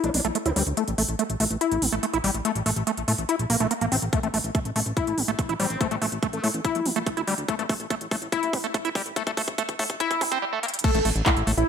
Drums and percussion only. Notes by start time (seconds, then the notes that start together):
0.04 closed hi-hat
0.14 open hi-hat
0.25 closed hi-hat
0.35 closed hi-hat
0.46 closed hi-hat
0.56 open hi-hat
0.67 closed hi-hat
0.77 closed hi-hat
0.88 closed hi-hat
0.98 open hi-hat
1.09 closed hi-hat
1.19 closed hi-hat
1.30 closed hi-hat
1.40 open hi-hat
1.51 closed hi-hat
1.61 closed hi-hat
1.72 closed hi-hat
1.82 open hi-hat
1.93 closed hi-hat
2.03 closed hi-hat
2.14 closed hi-hat
2.24 open hi-hat
2.34 closed hi-hat
2.45 closed hi-hat
2.55 closed hi-hat
2.66 open hi-hat
2.76 closed hi-hat
2.87 closed hi-hat
2.97 closed hi-hat
3.08 open hi-hat
3.18 closed hi-hat
3.29 closed hi-hat
3.39 closed hi-hat
3.50 open hi-hat
3.60 closed hi-hat
3.71 closed hi-hat
3.81 closed hi-hat
3.92 open hi-hat
4.02 closed hi-hat
4.13 kick, closed hi-hat
4.23 closed hi-hat
4.34 open hi-hat
4.44 closed hi-hat
4.55 kick, closed hi-hat
4.65 closed hi-hat
4.76 open hi-hat
4.86 closed hi-hat
4.97 kick, closed hi-hat
5.07 closed hi-hat
5.18 open hi-hat
5.28 closed hi-hat
5.39 kick, closed hi-hat
5.49 closed hi-hat
5.60 open hi-hat
5.70 closed hi-hat
5.81 kick, closed hi-hat
5.91 closed hi-hat
6.02 open hi-hat
6.12 closed hi-hat
6.23 kick, closed hi-hat
6.33 closed hi-hat
6.44 open hi-hat
6.54 closed hi-hat
6.65 kick, closed hi-hat
6.75 closed hi-hat
6.86 open hi-hat
6.96 closed hi-hat
7.06 kick, closed hi-hat
7.17 closed hi-hat
7.27 open hi-hat
7.38 closed hi-hat
7.48 kick, closed hi-hat
7.59 closed hi-hat
7.69 kick, open hi-hat
7.80 closed hi-hat
7.90 kick, closed hi-hat
8.01 closed hi-hat
8.11 kick, open hi-hat
8.22 closed hi-hat
8.32 kick, closed hi-hat
8.43 closed hi-hat
8.53 kick, open hi-hat
8.64 closed hi-hat
8.74 kick, closed hi-hat
8.85 closed hi-hat
8.95 kick, open hi-hat
9.06 closed hi-hat
9.16 kick, closed hi-hat
9.27 kick, closed hi-hat
9.37 kick, open hi-hat
9.48 kick, closed hi-hat
9.58 kick, closed hi-hat
9.69 kick, closed hi-hat
9.79 kick, open hi-hat
9.90 kick, closed hi-hat
10.00 kick, closed hi-hat
10.11 kick, closed hi-hat
10.21 kick, open hi-hat
10.32 kick, closed hi-hat
10.63 closed hi-hat
10.68 closed hi-hat
10.74 closed hi-hat
10.79 closed hi-hat
10.84 kick, closed hi-hat, crash
10.95 closed hi-hat
11.05 open hi-hat
11.16 closed hi-hat
11.26 kick, clap, closed hi-hat
11.37 closed hi-hat
11.47 open hi-hat
11.58 closed hi-hat